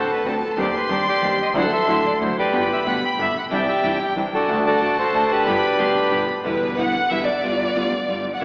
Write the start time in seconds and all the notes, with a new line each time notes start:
Already playing: F#4 A4 C5 A5
0.12 B4
0.24 D2 D3 A3 C4 D4 F#4
0.28 A4
0.40 C#2
0.45 A4
0.56 D#2 D#3 G3 C4 D4 D#4 G4 D5 C6
0.76 B4
0.89 D#2 D#3 G3 C4 D4 D#4 G4 D5
1.08 G4 D5
1.22 D#2 D#3 G3 C4 D4 D#4 G4
1.42 D#5
1.54 D2 D3 F#3 A3 D4 E4 F#4 A4 F#5 C6
1.73 A4 E5
1.86 A1 D3 F#3 A3 D4 E4 F#4
2.06 D5
2.20 D2 D3 F#3 A3 D4 E4 F#4 C5
2.35 F1 G4 B4 D5
2.51 G1 B2 D3 G3 B3 D4 G4 B5
2.73 E5
2.84 D2 B2 D3 G3 B3 D4 G4 F#5
3.05 G5
3.18 G1 B2 D3 G3 B3 D4 G4
3.22 E5
3.35 A#1 F#5
3.50 C2 C3 E3 G3 C4 D4 E4 D5 E5 G5
3.68 G4 E5
3.83 G1 C3 E3 G3 C4 D4 E4
4.16 C2 C3 E3 G3 C4 D4 E4
4.32 C2 D4 F#4 A4
4.42 G#5
4.47 D2 D3 A3 D4 F#4 A5
4.67 F#4 A4 D5
4.80 A1 D3 A3 D4 F#4
4.99 F#4 A4 C5
5.13 D2 D3 A3 D4 F#4
5.32 D4 G4 B4
5.45 G1 B2 D3 G3 B3 D4 G4 B5
5.78 D2 B2 D3 G3 B3 D4 G4 C6
5.96 B5
6.11 G1 B2 D3 G3 B3 D4 G4
6.44 E2 B2 D3 G3 B3 D4 E4 G4 B4
6.77 B1 B2 D3 G3 B3 D4 E4 G4 F#5
7.10 E2 B2 D3 G3 B3 D4 E4 G4 E5
7.27 D5
7.42 G1 G3 B3 F4 G4
7.74 D2 G3 B3 F4 G4
8.07 G1 G3 B3 F4 G4
8.34 F#5
8.40 F#1 C#3 E3 A#3 E4 F#4